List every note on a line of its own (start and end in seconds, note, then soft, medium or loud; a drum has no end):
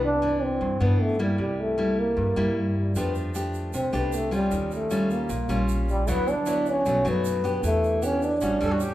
0.00 0.58 C2 medium
0.00 0.60 C3 medium
0.04 0.44 D4 medium
0.22 0.78 E3 medium
0.22 0.78 D4 medium
0.42 0.83 C4 medium
0.61 1.37 G2 medium
0.61 0.80 G2 medium
0.80 1.35 G2 medium
0.80 1.17 E3 medium
0.80 1.17 B3 medium
0.80 1.03 B3 medium
0.80 1.17 D4 medium
1.01 1.20 A3 medium
1.19 1.75 G3 medium
1.19 1.39 G3 medium
1.19 1.75 A#3 medium
1.19 1.75 E4 medium
1.38 2.13 C2 medium
1.38 2.15 C3 medium
1.38 1.62 G3 medium
1.60 2.01 A3 medium
1.78 2.34 G3 soft
1.78 2.34 A#3 soft
1.78 2.34 E4 medium
1.99 2.57 A#3 medium
2.17 2.93 G2 medium
2.17 2.36 G2 medium
2.36 2.92 G2 medium
2.36 2.92 G3 medium
2.36 2.92 A#3 medium
2.36 2.92 E4 medium
2.78 2.99 G3 medium
2.95 3.70 F2 medium
2.95 3.72 F3 medium
2.95 3.32 A3 medium
2.95 3.16 B3 medium
2.95 3.32 D4 medium
2.95 3.32 G4 medium
2.95 shaker medium
3.15 shaker soft
3.35 3.90 A3 medium
3.35 3.90 D4 medium
3.35 3.91 G4 medium
3.35 shaker medium
3.54 shaker soft
3.73 3.92 C2 medium
3.73 4.50 C3 medium
3.73 3.97 C4 medium
3.73 shaker medium
3.93 4.48 C2 medium
3.93 4.29 A3 medium
3.93 4.16 B3 medium
3.93 4.29 D4 medium
3.93 4.29 G4 medium
3.93 shaker soft
4.13 4.33 A3 medium
4.13 shaker medium
4.31 4.87 G3 medium
4.31 4.70 G3 medium
4.31 4.88 C#4 medium
4.31 4.88 F4 medium
4.31 shaker soft
4.51 5.26 D#2 medium
4.51 5.27 D#3 medium
4.51 shaker medium
4.71 5.14 A3 medium
4.71 shaker soft
4.91 5.30 G3 medium
4.91 5.30 C#4 medium
4.91 5.30 F4 medium
4.91 shaker medium
5.10 5.70 A#3 medium
5.10 shaker soft
5.29 5.48 A#1 medium
5.29 6.06 A#2 medium
5.29 shaker medium
5.49 6.04 A#1 loud
5.49 6.05 G3 medium
5.49 6.05 C#4 medium
5.49 6.05 F4 medium
5.49 shaker soft
5.68 shaker medium
5.89 6.11 G3 medium
5.89 shaker soft
6.07 6.82 D2 medium
6.07 6.84 D3 medium
6.07 6.33 F#3 medium
6.07 6.33 B3 medium
6.07 6.31 B3 loud
6.07 6.33 E4 medium
6.07 shaker medium
6.27 6.71 D4 loud
6.27 shaker soft
6.46 6.84 F#3 medium
6.46 6.84 B3 medium
6.46 6.84 E4 medium
6.46 shaker medium
6.66 7.10 C#4 medium
6.66 shaker soft
6.85 7.04 B1 medium
6.85 7.62 B2 medium
6.85 7.02 F#3 medium
6.85 7.03 A3 medium
6.85 7.03 D#4 medium
6.85 shaker medium
7.05 7.60 F#2 loud
7.05 7.41 F#3 medium
7.05 7.41 A3 medium
7.05 7.64 B3 loud
7.05 7.41 D#4 medium
7.05 shaker soft
7.25 shaker medium
7.44 8.00 B3 medium
7.44 8.00 D4 medium
7.44 8.00 G4 medium
7.44 shaker soft
7.63 8.38 E2 medium
7.63 8.40 E3 medium
7.63 8.06 A3 loud
7.63 shaker medium
7.84 shaker soft
8.02 8.29 B3 medium
8.02 8.26 C#4 medium
8.02 8.29 D4 medium
8.02 8.29 G4 medium
8.02 shaker medium
8.22 8.82 D4 medium
8.22 shaker soft
8.41 8.60 A1 medium
8.41 8.94 A2 medium
8.41 8.58 G3 medium
8.41 8.58 C#4 medium
8.41 8.58 F#4 medium
8.41 shaker medium
8.61 8.94 E2 medium
8.61 8.94 G3 medium
8.61 8.94 C#4 medium
8.61 8.73 A4 loud
8.61 shaker soft
8.71 8.82 F#4 medium
8.80 8.94 G4 medium
8.80 shaker medium